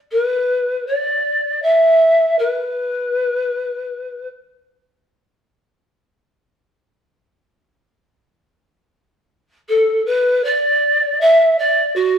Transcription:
0.11 B4
0.87 D5
1.62 E5
2.39 B4
9.69 A4
10.06 B4
10.44 D5
11.20 E5
11.58 D5
11.95 F#4

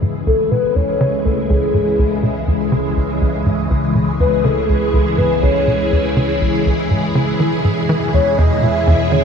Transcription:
Already playing: C#2 C#3 E3 G#3 E4 G#4
0.02 G#2
0.27 C#2 A4
0.51 B2 B4
0.76 E2 C#5
1.01 C#3
1.25 C#2 A4
1.50 C#2 G#4
1.74 G#2
1.99 C#2
2.23 B2
2.48 E2
2.72 C#3
2.97 C#2
3.21 C#2
3.46 G#2
3.70 C#2
3.95 B2
4.20 E2 B4
4.44 C#3 A4
4.69 C#2 G#4
4.93 C#2
5.18 G#2 B4
5.42 C#2 C#5
5.67 B2
5.92 E2
6.16 C#3
6.41 C#2
6.66 C#2
6.90 G#2
7.15 C#3
7.39 E2 B2 D#3 G#3
7.64 G#2
7.89 E3
8.14 E2 C#5
8.38 E2 D#5
8.63 B2 E5
8.87 E2
9.12 D#3 C#5

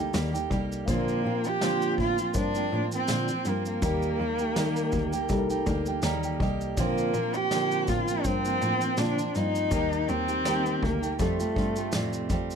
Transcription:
Already playing: G3 D#4 G4 A4 A#4
0.00 A#3 D#4
0.14 D#2 D#3 G3 A#3 D#4 G4, snare, shaker
0.33 A#3 D#4 G4, shaker
0.50 C2 G3 A#3 D#4 G4, kick, snare, shaker
0.72 shaker
0.86 A#2 D3 F3 A#3 C4 D4 F4 C5, kick, shaker
0.90 A#3
1.08 shaker
1.24 A#2 F3 A#3 C4 F4
1.44 F3 A#3 C4 F4, shaker
1.48 G4
1.61 A#2 D3 F3 A#3 C4 D4 F4 C5, snare, shaker
1.82 shaker
1.98 A2 F4, kick
2.18 F3 A#3 C4 F4, shaker
2.34 G2 D4 A#4 C5, kick, shaker
2.38 D4
2.55 F3 A#3 C4 F4, shaker
2.72 A2 F3 A#3 C4 F4
2.92 F3 A#3 C4 F4, shaker
3.08 A#2 D3 F3 A#3 C4 F4, snare, shaker
3.28 F3 A#3 C4 F4, shaker
3.45 G2 F3 A#3 C4 F4, snare, shaker
3.49 A#3
3.65 A#3, shaker
3.82 D#2 D#3 G3 A#3 D#4 G4 A#4, kick, shaker
4.02 shaker
4.19 D#2 G3 A#3 D#4 G4
4.39 A#3 D#4 G4, shaker
4.56 D#3 G3 A#3 D#4 G4 A#4, snare, shaker
4.76 shaker
4.92 D2, kick, shaker
5.13 A#3 D#4 G4, shaker
5.29 C2 G3 D#4 A4, kick, shaker
5.38 A#4
5.50 A#3 D#4 G4, shaker
5.66 D2 G3 A#3 D#4 G4, kick, shaker
5.86 A#3 D#4 G4, shaker
6.02 D#2 D#3 G3 A#3 D#4 G4 A#5, snare, shaker
6.23 G5, shaker
6.40 C2 G3 A#3 D#4 G4 D#5, kick
6.61 shaker
6.77 A#2 D3 F3 A#3 C4 D4 F4 C5, kick, shaker
6.98 shaker
7.14 A#2 F3 A#3 C4 F4, shaker
7.34 F3 A#3 C4 F4 G4, shaker
7.51 A#2 D3 F3 A#3 C4 D4 F4 A#4, snare, shaker
7.72 shaker
7.87 A2 F4, kick, shaker
8.08 F3 A#3 C4 F4, shaker
8.24 G2 C4 D4 A#4 C5, kick, shaker
8.45 F3 A#3 C4 F4, shaker
8.62 A2 F3 A#3 C4 F4, shaker
8.81 A#3 C4 F4, shaker
8.85 F3
8.97 A#2 D3 F3 A#3 C4 D4 F4, snare, shaker
9.19 F3 A#3 C4 F4, shaker
9.35 G2 F3 A#3 C4 D#4 F4, snare, shaker
9.55 shaker
9.71 D#2 D#3 G3 A#3 D#4 G4 A#4, kick, shaker
9.92 shaker
10.08 D#2 D#3 A#3 C4 D#4 G4, shaker
10.28 A#3 D#4 G4, shaker
10.45 D#3 G3 A#3 D#4 G4 A#4, snare, shaker
10.66 shaker
10.82 D2 A#3, kick
11.02 A#3 D#4 G4, shaker
11.19 F2 C3 G3 A3 C4 F4 A4, kick, shaker
11.39 G3 A3 C4 F4, shaker
11.56 G2 G3 A3 C4 F4, kick
11.76 G3 A3 C4 F4, shaker
11.92 F2 A2 C3 G3 A3 C4 F4, snare, shaker
12.13 shaker
12.29 F2 G3 A3 C4 F4, kick, snare, shaker
12.51 shaker

